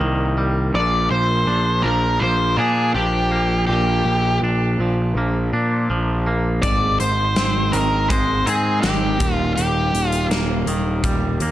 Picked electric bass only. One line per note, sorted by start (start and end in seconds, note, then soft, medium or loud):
0.01 0.70 C2 medium
0.74 1.08 A#1 medium
1.11 1.45 A#1 medium
1.47 1.81 A#1 medium
1.84 2.18 A#1 medium
2.21 2.55 A#1 medium
2.58 2.92 A#2 medium
2.95 3.64 A#1 medium
3.68 4.03 A#1 medium
4.05 4.39 A#1 medium
4.42 4.76 A#1 medium
4.79 5.13 A#1 medium
5.15 5.50 A#1 medium
5.53 5.87 A#2 medium
5.90 6.59 A#1 medium
6.63 6.97 G#1 medium
7.00 7.34 G#1 medium
7.37 7.71 G#1 medium
7.74 8.08 G#1 medium
8.11 8.44 G#1 medium
8.47 8.81 G#2 medium
8.84 9.18 G#1 medium
9.20 9.54 D#1 medium
9.58 9.91 D#1 medium
9.93 10.28 D#1 medium
10.30 10.64 D#1 medium
10.66 11.01 D#1 medium
11.04 11.38 D#1 medium
11.40 11.51 D#2 medium